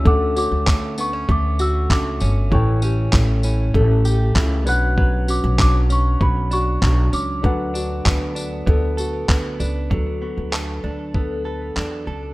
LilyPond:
<<
  \new Staff \with { instrumentName = "Celesta" } { \time 4/4 \key d \major \tempo 4 = 97 d'''8 d'''4 cis'''8 d'''8 e'''8 d'''4 | cis'''4 r2 r8 fis'''8~ | fis'''8 d'''8 d'''8 cis'''8 b''8 cis'''4 d'''8~ | d'''2. r4 |
r1 | }
  \new Staff \with { instrumentName = "Reed electric piano" } { \time 4/4 \key d \major <cis' d' a' fis''>1 | <e' a' cis'' g''>2.~ <e' a' cis'' g''>8 <cis' d' b' fis''>8~ | <cis' d' b' fis''>2.~ <cis' d' b' fis''>8 r8 | <d' a' b' fis''>1 |
r1 | }
  \new Staff \with { instrumentName = "Ukulele" } { \time 4/4 \key d \major a'8 fis'8 d'8 d'8 a'8 fis'8 d'4 | <a' cis''>8 g'8 e'8 e'8 a'8 g'8 e'8 b'8 | <b' cis''>8 fis'8 d'8 d'8 b'8 fis'8 d'4 | <a' b'>8 fis'8 d'8 d'8 a'8 fis'8 d'8 b'8 |
a'8 fis'8 d'8 d'8 a'8 b'8 d'8 d'8 | }
  \new Staff \with { instrumentName = "Clean electric guitar" } { \time 4/4 \key d \major a8 cis'8 a8 b16 cis'16 a8 fis'8 a8 cis'8 | e8 cis'8 a8 cis'8 a8 g'8 a8 fis8 | fis8 cis'8 fis8 cis'8 fis8 d'8 fis8 cis'8 | fis8 d'8 b8 d'8 b8 a'8 b8 d'8 |
fis8 b8 a'8 d'8 b8 a'8 d'8 a'8 | }
  \new Staff \with { instrumentName = "Upright bass" } { \clef bass \time 4/4 \key d \major d,8. d,4~ d,16 d,4 cis,8 g,,8 | a,,4 a,,4 a,,4 cis,8 b,,8~ | b,,8. b,,4~ b,,16 b,,4 b,,8 cis,8 | d,4 d,4 d,4 d,8 cis,8 |
d,8. d,8. d,4. e,8 cis,8 | }
  \new DrumStaff \with { instrumentName = "Drums" } \drummode { \time 4/4 bd8 tamb8 <hc bd>8 tamb8 bd8 tamb8 <hc bd>8 tamb8 | bd8 tamb8 <hc bd>8 tamb8 bd8 tamb8 <hc bd>8 tamb8 | bd8 tamb8 <hc bd>8 tamb8 bd8 tamb8 <hc bd>8 tamb8 | bd8 tamb8 <hc bd>8 tamb8 bd8 tamb8 <hc bd>8 tamb8 |
bd4 hc4 bd4 hc4 | }
>>